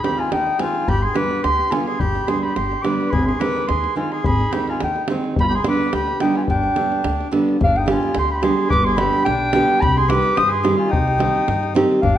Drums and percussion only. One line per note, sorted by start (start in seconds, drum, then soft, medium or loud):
0.04 davul high medium
0.19 davul high soft
0.32 davul high medium
0.47 davul high soft
0.59 davul high medium
0.75 davul high soft
0.88 davul low medium
1.03 davul high soft
1.16 davul high medium
1.31 davul high soft
1.44 davul high medium
1.59 davul high soft
1.72 davul high medium
1.87 davul high soft
2.00 davul low medium
2.15 davul high soft
2.28 davul high medium
2.44 davul high soft
2.56 davul high medium
2.72 davul high soft
2.85 davul high medium
3.01 davul high soft
3.13 davul low medium
3.29 davul high soft
3.41 davul high medium
3.57 davul high soft
3.69 davul high medium
3.84 davul high soft
4.12 davul high soft
4.24 davul low loud
4.40 davul high soft
4.53 davul high medium
4.68 davul high soft
4.80 davul high medium
4.96 davul high soft
5.08 davul high medium
5.24 davul high soft
5.36 davul low loud
5.52 davul high soft
5.64 davul high medium
5.81 davul high soft
5.93 davul high medium
6.07 davul high soft
6.20 davul high medium
6.35 davul high soft
6.48 davul low medium
6.63 davul high soft
6.76 davul high medium
6.92 davul high soft
7.04 davul high medium
7.21 davul high soft
7.33 davul high medium
7.49 davul high soft
7.61 davul low loud
7.76 davul high soft
7.88 davul high medium
8.03 davul high soft
8.15 davul high medium
8.43 davul high medium
8.70 davul low loud
8.87 davul high soft
8.98 davul high medium
9.13 davul high soft
9.26 davul high medium
9.53 davul high medium
9.82 davul low medium
9.97 davul high soft
10.10 davul high medium
10.25 davul high soft
10.37 davul high medium
10.65 davul high medium
10.93 davul low loud
11.08 davul high soft
11.20 davul high medium
11.35 davul high soft
11.48 davul high medium
11.63 davul high soft
11.76 davul high medium
11.92 davul high soft
12.04 davul low medium